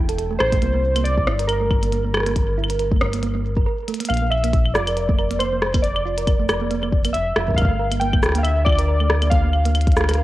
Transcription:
Already playing: analog synth bass E1
0.09 synth arpeggio sound A4, closed hi-hat
0.18 synth arpeggio sound A4, closed hi-hat
0.31 synth arpeggio sound A3
0.39 analog synth bass A1, synth arpeggio sound A4, synth keys C5, cross-stick, claves
0.52 synth arpeggio sound A3, kick, closed hi-hat
0.62 analog synth bass C2, synth arpeggio sound A#3, closed hi-hat
0.74 synth arpeggio sound A#3
0.96 synth arpeggio sound A#3, closed hi-hat, claves
1.04 synth keys D5, closed hi-hat
1.18 kick
1.27 analog synth bass G1, synth arpeggio sound E4, cross-stick
1.39 synth arpeggio sound A#4, closed hi-hat
1.47 synth keys A#4, synth arpeggio sound A#4, closed hi-hat, claves
1.61 synth arpeggio sound A3
1.71 synth arpeggio sound A#4, kick, claves
1.83 synth arpeggio sound A#3, closed hi-hat
1.92 synth arpeggio sound A#3, closed hi-hat
2.05 synth arpeggio sound A#3
2.14 cross-stick, claves
2.17 cross-stick
2.20 cross-stick
2.23 cross-stick
2.26 synth arpeggio sound A#3, cross-stick, closed hi-hat
2.29 cross-stick
2.31 cross-stick
2.33 kick, cross-stick, closed hi-hat
2.58 synth arpeggio sound E4
2.64 claves
2.70 synth arpeggio sound A#4, closed hi-hat
2.79 synth arpeggio sound A#4, closed hi-hat
2.92 synth arpeggio sound A3, kick
3.01 analog synth bass G1, synth arpeggio sound A#4, cross-stick
3.13 synth arpeggio sound A#3, closed hi-hat
3.23 synth arpeggio sound A#3, closed hi-hat
3.35 synth arpeggio sound A#3
3.57 synth arpeggio sound A#4, kick
3.66 synth arpeggio sound A#4
3.88 synth arpeggio sound A3, closed hi-hat
3.94 closed hi-hat
4.00 synth arpeggio sound A#3, closed hi-hat
4.05 synth keys F5, closed hi-hat
4.10 analog synth bass A#1, synth arpeggio sound A#3, closed hi-hat, claves
4.14 closed hi-hat
4.17 closed hi-hat
4.22 synth arpeggio sound A#3
4.30 synth keys E5, claves
4.44 synth arpeggio sound A#3, closed hi-hat
4.53 kick, closed hi-hat
4.65 claves
4.74 analog synth bass F1, synth arpeggio sound F4, synth keys D5, cross-stick, cabasa
4.87 synth arpeggio sound A#4, closed hi-hat, claves
4.97 synth arpeggio sound A#4, closed hi-hat
5.09 synth arpeggio sound A3, kick
5.19 synth arpeggio sound A#4, claves
5.31 synth arpeggio sound A#3, closed hi-hat
5.39 synth arpeggio sound A#3, synth keys C5, closed hi-hat, claves
5.52 synth arpeggio sound A#3
5.62 cross-stick
5.74 synth arpeggio sound A#3, kick, closed hi-hat, claves
5.82 synth keys D5, closed hi-hat
5.96 claves
6.05 synth arpeggio sound F4
6.18 synth arpeggio sound A#4, closed hi-hat
6.27 synth arpeggio sound A#4, kick, closed hi-hat, claves
6.39 synth arpeggio sound A3
6.49 analog synth bass F1, synth arpeggio sound A#4, cross-stick, cabasa, claves
6.61 synth arpeggio sound A#3
6.71 synth arpeggio sound A#3, closed hi-hat
6.83 synth arpeggio sound A#3, claves
6.92 kick
7.05 synth arpeggio sound A#3, closed hi-hat, cabasa, claves
7.13 analog synth bass F1, synth keys E5, closed hi-hat
7.36 analog synth bass F1, synth arpeggio sound F4, cross-stick, claves
7.48 synth arpeggio sound A#4, kick
7.50 kick
7.54 analog synth bass G1, synth keys F5, kick
7.58 synth arpeggio sound A#4, kick, closed hi-hat, claves
7.62 kick
7.65 kick
7.70 synth arpeggio sound A3
7.79 synth arpeggio sound A#4
7.92 synth arpeggio sound A#3, closed hi-hat, claves
8.00 synth arpeggio sound A#3, synth keys G5, closed hi-hat
8.13 synth arpeggio sound A#3, kick, claves
8.23 analog synth bass D2, cross-stick, cabasa
8.26 cross-stick
8.29 cross-stick
8.32 synth arpeggio sound A#3, cross-stick, closed hi-hat
8.38 synth keys F5
8.43 synth keys E5, closed hi-hat, claves
8.65 synth arpeggio sound F4, synth keys D5, kick, claves
8.69 claves
8.72 claves
8.79 synth arpeggio sound A#4, closed hi-hat
8.88 synth arpeggio sound A#4
9.00 synth arpeggio sound A3, claves
9.10 synth arpeggio sound A#4, cross-stick
9.22 synth arpeggio sound A#3, closed hi-hat, claves
9.30 synth arpeggio sound A#3, synth keys F5, kick, closed hi-hat
9.44 synth arpeggio sound A#3
9.53 claves
9.65 synth arpeggio sound A#3, closed hi-hat
9.75 closed hi-hat, claves
9.81 closed hi-hat
9.87 kick, closed hi-hat
9.92 closed hi-hat
9.97 analog synth bass D2, synth arpeggio sound F4, cross-stick, cabasa
10.01 cross-stick
10.04 cross-stick
10.09 synth arpeggio sound A#4, cross-stick, closed hi-hat, claves
10.11 cross-stick, closed hi-hat
10.15 synth arpeggio sound A#4, cross-stick

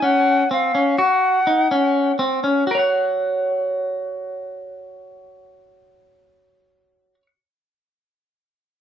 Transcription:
0.02 clean electric guitar C#4, flute F#5
0.51 clean electric guitar C4, flute F5
0.75 clean electric guitar C#4
0.98 clean electric guitar F#4, flute F#5
1.47 clean electric guitar D#4
1.71 clean electric guitar C#4
2.19 clean electric guitar C4
2.44 clean electric guitar C#4
2.67 clean electric guitar F#4
2.71 clean electric guitar A#4 C#5
2.79 clean electric guitar F#5

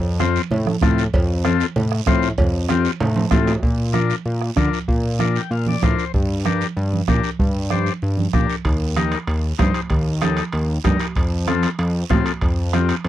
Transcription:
Already playing: analog synth bass F2
0.20 transistor combo organ C4 F4 C5, bombo rim, cowbell, high conga, short guiro
0.36 short guiro
0.51 analog synth bass A2, cowbell, low conga, long guiro
0.66 bombo rim, high conga
0.81 analog synth bass A2, transistor combo organ C4 F4 A4, bombo low, bombo rim, cowbell, high conga, low conga, short guiro
0.98 short guiro
1.14 analog synth bass F2, bombo low, cowbell, long guiro
1.44 transistor combo organ C4 F4 A4, bombo rim, cowbell, high conga, short guiro
1.60 short guiro
1.76 analog synth bass A2, cowbell, low conga, long guiro
1.92 bombo rim
2.06 analog synth bass A2, transistor combo organ C4 F4 C5, bombo low, bombo rim, cowbell, high conga, short guiro
2.22 short guiro
2.38 analog synth bass F2, bombo low, cowbell, low conga, long guiro
2.69 transistor combo organ C4 F4 G4, bombo rim, cowbell, high conga, short guiro
2.85 short guiro
3.00 analog synth bass A2, cowbell, low conga, high timbale, long guiro
3.16 high conga, high timbale
3.31 analog synth bass A2, transistor combo organ C4 F4 A4, bombo low, bombo rim, cowbell, high conga, low timbale, short guiro
3.47 low timbale, short guiro
3.63 analog synth bass A#2, bombo low, long guiro
3.93 transistor combo organ D4 F4 A#4, bombo rim, high conga, short guiro
4.10 short guiro
4.26 analog synth bass A#2, long guiro
4.42 bombo rim
4.56 analog synth bass D3, transistor combo organ D4 F4 A#4, bombo low, bombo rim, high conga, short guiro
4.73 short guiro
4.88 analog synth bass A#2, bombo low, long guiro
5.19 transistor combo organ D4 F4 A#4, bombo rim, high conga, short guiro
5.36 transistor combo organ G5, short guiro
5.51 analog synth bass A#2, transistor combo organ F5, long guiro
5.66 transistor combo organ D5, high conga
5.82 analog synth bass A2, transistor combo organ D4 F4 A#4 C5, bombo low, bombo rim, high conga, short guiro
5.99 short guiro
6.14 analog synth bass G2, bombo low, long guiro
6.45 transistor combo organ D4 G4 A#4, bombo rim, high conga, short guiro
6.61 short guiro
6.77 analog synth bass G2, long guiro
6.93 high conga
7.08 analog synth bass A#2, transistor combo organ D4 G4 A#4, bombo low, bombo rim, high conga, short guiro
7.24 short guiro
7.39 analog synth bass G2, bombo low, long guiro
7.70 transistor combo organ D4 G4 C5, bombo rim, high conga, short guiro
7.86 short guiro
8.02 analog synth bass G2, long guiro
8.18 high conga
8.33 analog synth bass A#2, transistor combo organ D4 G4 A#4, bombo low, bombo rim, high conga, short guiro
8.50 short guiro
8.65 analog synth bass D#2, bombo low, high timbale, long guiro
8.96 transistor combo organ D#4 G4 A#4, bombo rim, high conga, high timbale, short guiro
9.12 high timbale, short guiro
9.27 analog synth bass D#2, high timbale, long guiro
9.58 analog synth bass G2, transistor combo organ D#4 G4 C5, bombo low, bombo rim, high conga, high timbale, low timbale, short guiro
9.74 high timbale, short guiro
9.90 analog synth bass D#2, bombo low, high timbale, long guiro
10.22 transistor combo organ D#4 G4 A4, bombo rim, high conga, high timbale, short guiro
10.37 high timbale, short guiro
10.53 analog synth bass D#2, high timbale, long guiro
10.84 analog synth bass G2, transistor combo organ D#4 G4 A#4, bombo low, bombo rim, high conga, high timbale, low timbale, short guiro
11.00 high timbale, short guiro
11.15 analog synth bass F2, bombo low, high timbale, long guiro
11.47 transistor combo organ C4 F4 A4, bombo rim, high conga, high timbale, short guiro
11.63 high timbale, short guiro
11.79 analog synth bass F2, high timbale, long guiro
12.10 analog synth bass A2, transistor combo organ C4 F4 A4, bombo low, bombo rim, high conga, high timbale, low timbale, short guiro
12.26 high timbale, short guiro
12.41 analog synth bass F2, bombo low, high timbale, long guiro
12.73 transistor combo organ C4 F4 G4, bombo rim, high conga, high timbale, short guiro
12.89 high timbale, short guiro
13.04 analog synth bass F2, high timbale, long guiro

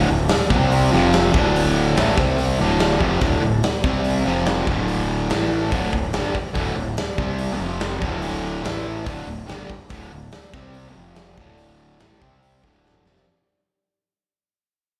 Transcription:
0.09 fingered electric bass D1, distorted electric guitar D2 A2
0.29 snare, open hi-hat
0.50 fingered electric bass C2, distorted electric guitar C3 G3 C4, kick
0.72 open hi-hat
0.92 fingered electric bass F1, distorted electric guitar F2 C3 F3, snare
1.13 snare, open hi-hat
1.33 fingered electric bass D1, distorted electric guitar D2 A2 D3, kick
1.56 open hi-hat
1.96 fingered electric bass A1, distorted electric guitar A2 E3 A3, snare, open hi-hat
2.16 fingered electric bass C2, distorted electric guitar C3 G3 C4, kick
2.38 open hi-hat
2.60 fingered electric bass D1, distorted electric guitar D2 A2 D3, snare
2.80 snare, open hi-hat
3.00 fingered electric bass F1, distorted electric guitar F2 C3 F3, kick
3.21 fingered electric bass D1, distorted electric guitar D2 A2 D3, kick, open hi-hat
3.41 fingered electric bass D1, distorted electric guitar D2 A2
3.63 snare, open hi-hat
3.84 fingered electric bass C2, distorted electric guitar C3 G3 C4, kick
4.04 open hi-hat
4.25 fingered electric bass F1, distorted electric guitar F2 C3 F3, snare
4.46 snare, open hi-hat
4.67 fingered electric bass D1, distorted electric guitar D2 A2 D3, kick
4.88 open hi-hat
5.30 fingered electric bass A1, distorted electric guitar A2 E3 A3, snare, open hi-hat
5.72 fingered electric bass D1, distorted electric guitar D2 A2 D3, kick, open hi-hat
5.93 fingered electric bass D1, distorted electric guitar D2 A2, kick
6.13 fingered electric bass G1, distorted electric guitar G2 D3 G3, snare, open hi-hat
6.34 muted distorted electric guitar stroke, muted fingered electric bass stroke, kick
6.54 fingered electric bass D1, distorted electric guitar D2 A2 D3, kick, open hi-hat
6.76 fingered electric bass D1, distorted electric guitar D2 A2
6.97 snare, open hi-hat
7.18 fingered electric bass C2, distorted electric guitar C3 G3 C4, kick
7.38 open hi-hat
7.58 fingered electric bass F1, distorted electric guitar F2 C3 F3
7.80 snare, open hi-hat
7.99 fingered electric bass D1, distorted electric guitar D2 A2 D3, kick
8.22 open hi-hat
8.63 fingered electric bass A1, distorted electric guitar A2 E3 A3, snare, open hi-hat
9.06 fingered electric bass D1, distorted electric guitar D2 A2 D3, kick, open hi-hat
9.27 fingered electric bass D1, distorted electric guitar D2 A2
9.46 fingered electric bass G1, distorted electric guitar G2 D3 G3, snare, open hi-hat
9.69 muted distorted electric guitar stroke, muted fingered electric bass stroke, kick
9.89 fingered electric bass D1, distorted electric guitar D2 A2 D3, kick, open hi-hat
10.12 fingered electric bass D1, distorted electric guitar D2 A2
10.32 snare, open hi-hat
10.53 fingered electric bass C2, distorted electric guitar C3 G3 C4, kick
10.74 open hi-hat
10.95 fingered electric bass F1, distorted electric guitar F2 C3 F3
11.16 snare, open hi-hat
11.38 fingered electric bass D1, distorted electric guitar D2 A2 D3, kick
11.58 open hi-hat
12.00 fingered electric bass A1, distorted electric guitar A2 E3 A3, snare, open hi-hat
12.20 fingered electric bass C2, distorted electric guitar C3 G3 C4, kick
12.43 open hi-hat
12.63 fingered electric bass D1, distorted electric guitar D2 A2 D3, kick, snare
12.86 snare
12.94 mid tom
13.05 fingered electric bass F1, distorted electric guitar F2 C3 F3, snare
13.16 snare

